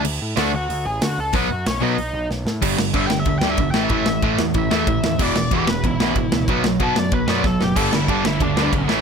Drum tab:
CC |x-------|--------|x-------|--------|
RD |--------|--------|--x-x-x-|x-x-x-x-|
HH |--o-o-o-|o-o-o---|--------|--------|
SD |--o---o-|--o---oo|-o-o-o-o|-o-o-o-o|
BD |--------|o-------|o-o-o-o-|o-o-o-o-|

CC |x-------|--------|x-------|
RD |--x-x-x-|x-x-x---|--x-x-x-|
HH |--------|--------|--------|
SD |-o-o-o-o|-o-o-ooo|-o-o-o-o|
BD |o-o-o-o-|o-o-o-o-|o-o-o-o-|